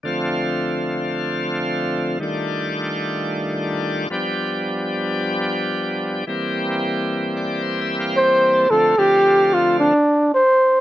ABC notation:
X:1
M:4/4
L:1/16
Q:1/4=111
K:F
V:1 name="Trumpet"
z16 | z16 | z16 | z12 c4 |
A2 G4 F2 D4 c4 |]
V:2 name="Tonewheel organ"
z16 | z16 | z16 | z6 d2 (3c2 e2 f2 (3g2 g2 a2 |
z16 |]
V:3 name="Tonewheel organ"
[D,F,A,CF]16 | [_E,G,A,DF]12- [E,G,A,DF]2 [F,G,=B,DG]2- | [F,G,=B,DG]12- [F,G,B,DG]2 [E,G,_B,CG]2- | [E,G,B,CG]16 |
[D,F,A,CF]2 [D,F,A,CF]6- [D,F,A,CF] z6 z |]